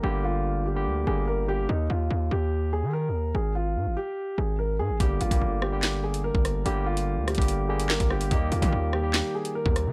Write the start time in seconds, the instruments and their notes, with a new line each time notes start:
Already playing: tine electric piano D3 G3 A#3 G4
0.03 808-style bass G1, tine electric piano D3 G3 A#3 G4, grand piano G4
0.24 grand piano F4
0.66 grand piano G4
0.75 tine electric piano D3 G3 A#3 G4
0.86 808-style bass D2
1.07 808-style bass G1, tine electric piano D3 G3 A#3 G4, grand piano G#4
1.28 grand piano A#4
1.48 tine electric piano D3 G3 A#3 G4, grand piano G4
1.69 808-style bass D#2, grand piano D#4
1.90 808-style bass D#2, grand piano F4
2.10 808-style bass D#2
2.31 808-style bass D#2, grand piano G4
2.73 grand piano G#4
2.83 808-style bass D#3
2.93 grand piano A#4
3.09 808-style bass D#2
3.35 808-style bass G#1, grand piano G#4
3.55 grand piano F4
3.76 808-style bass G#2
3.86 808-style bass G#1
3.97 grand piano G4
4.38 808-style bass G#1, grand piano G#4
4.59 grand piano A#4
4.79 808-style bass G#2, grand piano G#4
4.90 808-style bass G#1
5.00 808-style bass G1, tine electric piano D3 G3 A#3 G4, grand piano G4, kick, closed hi-hat
5.21 808-style bass G1, grand piano F4, closed hi-hat
5.31 808-style bass G1, tine electric piano D3 G3 A#3 G4, kick, closed hi-hat
5.41 808-style bass G1
5.62 grand piano G4, cross-stick
5.72 tine electric piano D3 G3 A#3 G4
5.83 snare, clap, closed hi-hat
6.04 grand piano G#4
6.14 closed hi-hat
6.24 grand piano A#4
6.35 808-style bass G1, kick
6.45 cross-stick, closed hi-hat
6.65 808-style bass G1, tine electric piano D3 G3 A#3 G4, grand piano G4, closed hi-hat
6.86 grand piano F4
6.97 closed hi-hat
7.17 808-style bass D2
7.28 grand piano G4, cross-stick, closed hi-hat
7.35 808-style bass G1, tine electric piano D3 G3 A#3 G4, kick, closed hi-hat
7.42 closed hi-hat
7.48 closed hi-hat
7.69 tine electric piano D3 G3 A#3 G4, grand piano G#4
7.80 closed hi-hat
7.90 grand piano A#4, snare, clap
8.00 808-style bass G1, kick, closed hi-hat
8.10 tine electric piano D3 G3 A#3 G4, grand piano G4, cross-stick
8.21 closed hi-hat
8.30 808-style bass D#2, tine electric piano D#3 G3 A#3 G4, grand piano D#4, kick, closed hi-hat
8.52 808-style bass D#2, grand piano F4, closed hi-hat
8.61 tine electric piano D#3 G3 A#3 G4, 808-style bass D#3, kick, closed hi-hat
8.72 808-style bass D#2
8.93 grand piano G4, cross-stick
9.03 tine electric piano D#3 G3 A#3 G4
9.14 snare, clap, closed hi-hat
9.35 grand piano G#4
9.45 closed hi-hat
9.55 grand piano A#4
9.66 808-style bass D#2, kick
9.76 cross-stick, closed hi-hat
9.86 808-style bass D#3